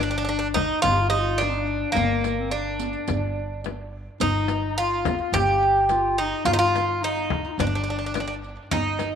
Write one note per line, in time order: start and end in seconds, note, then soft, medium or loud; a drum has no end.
0.00 0.69 G1 medium
0.00 0.23 D4 medium
0.00 0.10 D4 medium
0.00 riq soft
0.11 0.17 D4 soft
0.18 0.23 D4 medium
0.25 0.28 D4 medium
0.25 0.56 D4 medium
0.29 0.38 D4 medium
0.39 0.47 D4 medium
0.54 0.82 D#4 medium
0.54 0.86 D#4 medium
0.54 frame drum medium
0.71 riq soft
0.82 1.82 G1 medium
0.82 1.09 F4 loud
0.82 0.94 F4 medium
0.82 riq medium
0.82 frame drum medium
0.92 1.02 G4 medium
1.00 1.11 F4 medium
1.09 1.40 D#4 medium
1.09 1.20 G4 medium
1.18 1.44 F4 medium
1.38 1.92 D4 medium
1.38 riq soft
1.38 frame drum medium
1.43 1.51 D4 medium
1.49 1.57 C4 medium
1.55 1.96 D4 medium
1.92 2.93 G1 medium
1.92 2.51 A#3 medium
1.92 frame drum medium
1.96 2.41 A#3 medium
1.96 riq medium
2.24 riq soft
2.24 frame drum medium
2.40 2.53 C4 medium
2.51 3.60 D4 medium
2.51 3.62 D4 medium
2.79 riq medium
2.93 riq soft
3.07 4.06 G1 medium
3.07 riq medium
3.07 frame drum medium
3.64 riq soft
3.64 frame drum medium
4.20 5.19 G1 medium
4.20 4.81 D#4 medium
4.20 4.77 D#4 medium
4.20 riq medium
4.20 frame drum medium
4.48 riq soft
4.48 frame drum medium
4.78 5.33 F4 medium
4.78 5.20 F4 medium
5.05 riq medium
5.05 frame drum medium
5.19 5.36 F4 medium
5.19 riq soft
5.32 6.31 G1 medium
5.32 6.18 G4 loud
5.32 5.93 G4 medium
5.32 riq medium
5.32 frame drum medium
5.89 6.21 F4 medium
5.89 riq medium
5.89 frame drum medium
6.18 6.44 D#4 medium
6.18 6.47 D#4 medium
6.45 7.43 G1 medium
6.45 6.53 F4 medium
6.45 6.59 F4 medium
6.45 riq medium
6.45 frame drum medium
6.53 6.58 D#4 medium
6.59 7.03 F4 medium
6.76 riq soft
6.76 frame drum medium
7.01 7.43 D#4 medium
7.01 7.60 D#4 medium
7.01 riq soft
7.16 riq soft
7.30 frame drum medium
7.44 7.49 D#4 medium
7.44 riq soft
7.48 7.60 D#4 medium
7.48 7.53 F4 medium
7.58 8.56 G1 medium
7.58 8.14 D4 medium
7.58 7.66 D4 medium
7.58 riq medium
7.58 frame drum medium
7.67 7.73 D4 soft
7.75 7.81 D4 medium
7.84 7.89 D4 soft
7.84 riq soft
7.90 7.96 D4 soft
7.99 8.04 D4 soft
8.06 8.12 D4 soft
8.14 8.19 D4 soft
8.14 8.41 D4 medium
8.14 riq soft
8.14 frame drum medium
8.20 8.26 D4 soft
8.28 8.34 D4 soft
8.44 riq soft
8.71 9.15 G1 medium
8.71 9.15 D#4 medium
8.71 riq medium
8.71 frame drum medium
8.99 riq soft
8.99 frame drum medium